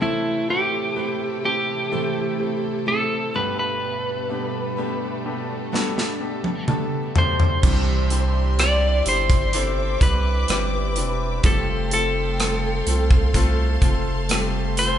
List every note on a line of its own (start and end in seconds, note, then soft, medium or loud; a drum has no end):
0.00 3.30 A1 soft
0.00 0.49 A2 medium
0.00 3.30 A2 soft
0.00 3.30 C3 medium
0.00 3.31 E3 soft
0.00 0.49 E3 medium
0.00 3.30 A3 soft
0.00 0.46 A3 medium
0.00 0.49 A3 medium
0.00 0.46 C4 medium
0.00 0.49 C4 medium
0.00 3.31 E4 medium
0.00 0.46 E4 medium
0.00 0.50 E4 medium
0.00 0.49 E4 medium
0.00 5.21 A4 medium
0.00 0.46 A4 medium
0.00 0.47 A4 medium
0.49 0.94 A3 medium
0.49 0.95 A3 soft
0.49 0.94 C4 medium
0.49 0.96 C4 soft
0.49 0.94 E4 medium
0.49 0.97 E4 soft
0.49 1.44 G4 medium
0.49 0.96 A4 soft
0.49 0.94 B4 medium
0.96 1.41 A3 medium
0.96 1.44 A3 soft
0.96 1.42 C4 soft
0.96 1.44 C4 soft
0.96 1.42 E4 soft
0.96 1.44 E4 soft
0.96 1.43 A4 medium
0.96 1.42 B4 medium
1.44 1.89 A3 medium
1.44 1.91 A3 soft
1.44 1.89 C4 soft
1.44 1.92 C4 soft
1.44 1.89 E4 medium
1.44 1.92 E4 soft
1.44 2.88 G4 medium
1.44 1.92 A4 soft
1.44 1.90 C5 medium
1.92 2.87 A2 medium
1.92 2.87 E3 medium
1.92 2.37 A3 medium
1.92 2.86 A3 medium
1.92 2.37 C4 medium
1.92 2.86 C4 medium
1.92 2.37 E4 medium
1.92 2.87 E4 medium
1.92 2.37 A4 medium
1.92 2.89 A4 medium
2.39 2.84 A3 soft
2.39 2.84 C4 soft
2.39 2.85 E4 soft
2.39 2.85 C5 medium
2.86 3.34 A3 soft
2.86 3.32 A3 medium
2.86 3.32 C4 soft
2.86 3.35 C4 soft
2.86 3.32 E4 soft
2.86 3.34 E4 medium
2.86 3.32 A4 medium
2.86 3.36 A4 medium
2.86 3.33 A4 soft
3.34 7.12 G1 soft
3.34 7.12 G2 soft
3.34 7.59 B2 medium
3.34 7.59 G3 medium
3.34 4.32 G3 soft
3.34 7.59 A3 medium
3.34 4.25 A3 medium
3.34 4.25 B3 soft
3.34 4.30 B3 soft
3.34 7.59 D4 medium
3.34 4.32 D4 soft
3.34 4.25 D4 soft
3.34 4.31 G4 soft
3.34 4.25 G4 medium
3.34 4.28 A4 medium
3.34 3.58 B4 medium
3.59 6.64 B4 medium
4.29 4.75 A3 medium
4.29 4.75 B3 soft
4.29 4.75 D4 soft
4.29 4.77 D4 soft
4.29 4.75 G4 medium
4.29 4.78 G4 soft
4.29 4.77 A4 soft
4.77 5.23 A3 medium
4.77 5.72 B3 soft
4.77 5.23 B3 medium
4.77 5.23 D4 medium
4.77 5.73 D4 medium
4.77 5.23 G4 medium
4.77 5.74 G4 medium
4.77 5.73 A4 medium
5.25 5.70 A3 medium
5.25 5.71 B3 medium
5.25 5.71 D4 medium
5.25 5.71 G4 medium
5.25 7.61 A4 medium
5.72 6.74 G3 medium
5.72 6.18 A3 medium
5.72 6.66 B3 medium
5.72 6.18 B3 medium
5.72 6.18 D4 medium
5.72 6.68 D4 medium
5.72 6.69 G4 medium
5.72 6.18 A4 loud
5.72 6.69 A4 medium
5.72 snare soft
5.98 snare soft
6.20 6.65 A3 medium
6.20 6.65 B3 soft
6.20 6.66 D4 medium
6.20 6.66 G4 medium
6.44 high tom soft
6.67 7.13 A3 medium
6.67 7.15 B3 medium
6.67 7.13 B3 medium
6.67 7.13 D4 soft
6.67 7.16 D4 medium
6.67 7.16 G4 soft
6.67 7.13 A4 medium
6.67 7.14 A4 medium
6.67 7.12 A5 soft
6.67 mid tom medium
7.15 7.61 B2 medium
7.15 7.61 A3 medium
7.15 7.61 D4 medium
7.15 7.63 D4 soft
7.15 7.61 G4 medium
7.15 7.63 A4 soft
7.15 8.60 C5 medium
7.15 7.60 E5 medium
7.15 floor tom medium
7.40 floor tom medium
7.62 9.02 C2 loud
7.62 8.58 C3 medium
7.62 9.02 C3 soft
7.62 8.59 E3 medium
7.62 8.57 G3 medium
7.62 8.08 C4 medium
7.62 8.08 D4 medium
7.62 8.58 D4 medium
7.62 8.08 E4 medium
7.62 8.59 E4 medium
7.62 11.40 G4 medium
7.62 8.09 G4 medium
7.62 8.60 C5 medium
7.62 11.40 D5 medium
7.62 11.40 E5 medium
7.62 9.51 C6 medium
7.62 kick medium
7.62 crash medium
8.10 8.56 C4 medium
8.10 8.56 D4 soft
8.10 8.56 E4 soft
8.10 8.56 G4 medium
8.10 closed hi-hat medium
8.58 9.06 G3 soft
8.58 9.03 C4 medium
8.58 9.04 D4 medium
8.58 9.06 D4 soft
8.58 9.04 E4 soft
8.58 9.05 E4 medium
8.58 9.04 G4 medium
8.58 9.04 C5 soft
8.58 9.03 D5 medium
8.58 cross-stick medium
8.58 closed hi-hat medium
9.05 9.97 G1 medium
9.05 10.03 G3 soft
9.05 9.51 C4 medium
9.05 9.51 D4 medium
9.05 10.01 D4 soft
9.05 10.00 E4 soft
9.05 9.52 E4 medium
9.05 9.51 G4 medium
9.05 10.06 C5 soft
9.05 10.02 C5 medium
9.05 closed hi-hat medium
9.30 kick medium
9.30 closed hi-hat soft
9.53 9.99 C4 medium
9.53 9.99 D4 medium
9.53 9.99 E4 medium
9.53 9.99 A4 medium
9.53 11.42 D6 medium
9.53 closed hi-hat medium
10.01 10.45 C2 medium
10.01 10.47 G3 soft
10.01 10.47 C4 medium
10.01 10.47 D4 soft
10.01 10.48 D4 soft
10.01 10.49 E4 soft
10.01 10.47 E4 soft
10.01 10.47 G4 medium
10.01 11.41 B4 medium
10.01 kick medium
10.01 closed hi-hat medium
10.48 10.98 G1 medium
10.48 11.44 G3 medium
10.48 10.94 C4 medium
10.48 11.44 D4 medium
10.48 10.94 D4 medium
10.48 10.94 E4 medium
10.48 11.45 E4 medium
10.48 10.95 G4 medium
10.48 cross-stick medium
10.48 closed hi-hat medium
10.96 11.41 E1 medium
10.96 11.42 C4 medium
10.96 11.42 D4 medium
10.96 11.42 E4 medium
10.96 11.42 G4 medium
10.96 closed hi-hat medium
11.43 12.83 F1 medium
11.43 12.39 F3 medium
11.43 12.37 G3 medium
11.43 11.89 A3 medium
11.43 11.90 C4 medium
11.43 12.39 C4 medium
11.43 11.90 F4 medium
11.43 12.39 F4 medium
11.43 11.90 G4 medium
11.43 14.98 A4 medium
11.43 12.41 A4 medium
11.43 11.92 A4 medium
11.43 14.98 F5 medium
11.43 13.32 G5 medium
11.43 14.98 C6 medium
11.43 kick medium
11.43 closed hi-hat medium
11.91 12.37 A3 medium
11.91 12.37 C4 medium
11.91 12.37 F4 medium
11.91 12.37 A4 medium
11.91 14.87 A4 medium
11.91 closed hi-hat medium
12.38 12.86 G3 soft
12.38 12.85 A3 medium
12.38 12.87 C4 medium
12.38 12.85 C4 medium
12.38 12.85 F4 medium
12.38 12.86 F4 medium
12.38 12.85 A4 medium
12.38 cross-stick medium
12.38 closed hi-hat medium
12.86 13.78 C2 medium
12.86 13.32 A3 medium
12.86 13.32 C4 medium
12.86 13.84 C4 soft
12.86 13.32 F4 medium
12.86 13.82 F4 soft
12.86 13.80 A4 soft
12.86 13.33 A4 medium
12.86 closed hi-hat medium
13.11 kick medium
13.34 13.80 A3 medium
13.34 13.80 C4 medium
13.34 13.80 F4 medium
13.34 13.80 A4 loud
13.34 14.98 A5 medium
13.34 kick medium
13.34 closed hi-hat medium
13.81 14.98 F1 medium
13.81 14.28 A3 medium
13.81 14.28 C4 medium
13.81 14.29 C4 soft
13.81 14.30 F4 soft
13.81 14.28 F4 medium
13.81 14.29 A4 soft
13.81 14.28 A4 medium
13.81 kick medium
13.81 closed hi-hat medium
14.29 14.98 G3 medium
14.29 14.76 A3 medium
14.29 14.98 C4 medium
14.29 14.76 C4 medium
14.29 14.98 F4 medium
14.29 14.76 F4 medium
14.29 14.76 G4 medium
14.29 14.98 A4 medium
14.29 cross-stick loud
14.29 closed hi-hat medium
14.77 14.98 A3 medium
14.77 14.98 C4 medium
14.77 14.98 F4 medium
14.77 14.98 A4 medium
14.77 14.98 C5 medium
14.77 closed hi-hat medium